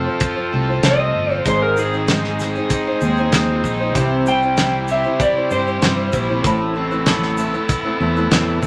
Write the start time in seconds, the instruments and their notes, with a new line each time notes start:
Already playing: overdriven electric guitar F3 C4 F4 A4, tonewheel organ C4 F4 A4 C5, grand piano F4 A4 C5
0.06 steel-string acoustic guitar C4 F4 C5
0.20 overdriven electric guitar F4, kick, closed hi-hat
0.36 steel-string acoustic guitar C4 F4 C5
0.52 fingered electric bass C2, steel-string acoustic guitar A3 C4 F4 C5, overdriven electric guitar A4
0.69 steel-string acoustic guitar C4 F4 C5
0.83 fingered electric bass C2, steel-string acoustic guitar F3 A3 C4 F4 C5, overdriven electric guitar C4, electric slide guitar D#5, snare, closed hi-hat
1.15 fingered electric bass G1, overdriven electric guitar F4
1.29 steel-string acoustic guitar C4 F4 C5
1.44 fingered electric bass G#1, overdriven electric guitar G#2, steel-string acoustic guitar G#3 D#4 G#4 C5, tonewheel organ C4 D#4 G#4 C5, grand piano D#4 G#4 C5, electric slide guitar C5, kick, closed hi-hat, shaker
1.62 electric slide guitar A#4
1.77 steel-string acoustic guitar G#3 D#4 G#4 C5, overdriven electric guitar C4, electric slide guitar G#4, shaker
1.93 steel-string acoustic guitar D#4 G#4 C5, shaker
2.08 steel-string acoustic guitar G#3 D#4 G#4 C5, overdriven electric guitar D#4, snare, closed hi-hat, shaker
2.24 snare
2.39 steel-string acoustic guitar G#3 D#4 G#4 C5, overdriven electric guitar G#4, snare, shaker
2.55 steel-string acoustic guitar D#4 G#4 C5, shaker
2.70 overdriven electric guitar D#4, kick, closed hi-hat, shaker
2.87 steel-string acoustic guitar D#4 G#4 C5
3.01 fingered electric bass D#2, steel-string acoustic guitar G#3 D#4 G#4, overdriven electric guitar G#4, shaker
3.05 steel-string acoustic guitar C5
3.17 steel-string acoustic guitar G#4 C5, shaker
3.21 steel-string acoustic guitar D#4
3.32 fingered electric bass D#2, steel-string acoustic guitar G#3 D#4 G#4 C5, overdriven electric guitar C4, grand piano D#4 G#4 C5, snare, closed hi-hat, shaker
3.64 fingered electric bass A#1, overdriven electric guitar D#4, kick, shaker
3.80 steel-string acoustic guitar D#4 G#4 C5
3.93 fingered electric bass C2, overdriven electric guitar C3, steel-string acoustic guitar C3 E3, tonewheel organ C4 E4 G4 C5, grand piano E4 G4 C5, kick, closed hi-hat, shaker
3.97 steel-string acoustic guitar G3 C4 E4 C5
4.26 overdriven electric guitar G3, steel-string acoustic guitar G3 C4 E4 C5, electric slide guitar G5, shaker
4.42 steel-string acoustic guitar G3 C4 E4 C5, shaker
4.57 steel-string acoustic guitar C3 E3 G3 C4 E4 C5, overdriven electric guitar E4, snare, closed hi-hat, shaker
4.88 steel-string acoustic guitar G3 C4 E4 C5, overdriven electric guitar G4, electric slide guitar E5, shaker
5.04 steel-string acoustic guitar G3 C4 E4 C5, shaker
5.20 overdriven electric guitar E4, electric slide guitar D5, kick, closed hi-hat, shaker
5.36 steel-string acoustic guitar G3 C4 E4 C5
5.51 fingered electric bass G2, steel-string acoustic guitar G3 C4 E4 C5, overdriven electric guitar G4, electric slide guitar C5, shaker
5.67 steel-string acoustic guitar G3 C4 E4 C5, shaker
5.82 fingered electric bass G2, steel-string acoustic guitar C3 E3 G3 C4 E4 C5, overdriven electric guitar G3, snare, closed hi-hat, shaker
6.13 fingered electric bass A#1, overdriven electric guitar E4, kick, shaker
6.29 steel-string acoustic guitar G3 C4 E4 C5
6.42 fingered electric bass A1, steel-string acoustic guitar A2 E3 A3 C4 E4, overdriven electric guitar A2, tonewheel organ E4 A4, grand piano A4, kick, closed hi-hat, shaker
6.46 grand piano B5
6.75 steel-string acoustic guitar A3 C4 E4 B4, overdriven electric guitar C4
6.91 steel-string acoustic guitar A3 C4 E4 B4, shaker
7.06 steel-string acoustic guitar A2 E3 A3 E4, overdriven electric guitar B3, snare, closed hi-hat, shaker
7.22 snare
7.37 steel-string acoustic guitar A3 C4 E4 B4, overdriven electric guitar E4, shaker
7.53 steel-string acoustic guitar A3 E4 B4, shaker
7.69 overdriven electric guitar B3, kick, closed hi-hat, shaker
7.84 steel-string acoustic guitar A3 C4 E4 B4
8.00 fingered electric bass E2, steel-string acoustic guitar A3 C4 E4 B4, overdriven electric guitar E4
8.16 steel-string acoustic guitar A3 C4 E4 B4, shaker
8.31 fingered electric bass E2, steel-string acoustic guitar A2 E3 A3 E4 B4, overdriven electric guitar C4, snare, closed hi-hat, shaker
8.63 fingered electric bass F#1, overdriven electric guitar B3, kick, shaker